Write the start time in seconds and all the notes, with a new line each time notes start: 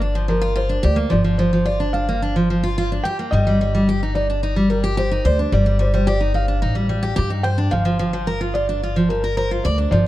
Already playing: G1 D5
0.02 D4
0.15 F3
0.28 F3 A#4
0.42 F4
0.56 F4 C5
0.69 D4
0.83 D2 G4 D5
0.96 A#3
1.10 G1 F3 D5
1.24 F3
1.38 F3 C5
1.53 F3
1.65 F4 D5
1.80 D4
1.93 D4 F5
2.09 A#3
2.22 D4
2.36 F3
2.50 F3
2.63 F4
2.78 F4
2.92 D4
3.04 G4 G5
3.19 A#3
3.31 G1 G3 D#5
3.47 G3
3.61 G3
3.75 G3
3.89 G4
4.03 D#4
4.15 D#4 D5
4.30 D4
4.43 D#4
4.56 G3
4.70 G3 A#4
4.84 G4
4.97 G4 C5
5.11 D#4
5.25 D2 C5 D5
5.39 D4
5.52 G1 G3 D5
5.66 G3
5.79 G3 C5
5.84 D5
5.94 G3 C5
6.07 G4 D5
6.21 D#4
6.34 D#4 F5
6.48 D4
6.62 A1 D#4
6.75 G3
6.89 G3
7.03 G4
7.16 G2 G4
7.30 D#4
7.43 C5 G5
7.58 D4
7.71 G1 F3 F5
7.85 F3
7.99 F3
8.13 F3
8.27 A#4
8.41 F4
8.54 F4 D5
8.69 D4
8.83 F4
8.96 F3
9.09 F3 A#4
9.24 A#4
9.37 A#4 C5
9.51 F4
9.64 D2 D5
9.78 D4
9.91 G1 F3 D5